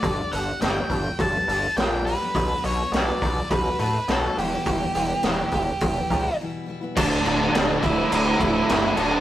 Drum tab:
CC |--------|--------|--------|xxxxxxxx|
HH |oooooooo|oooooooo|oooooo--|--------|
SD |--o---o-|--o---o-|--o-----|--o---o-|
BD |o--oo---|o--oo---|o--ooo--|o--o-o--|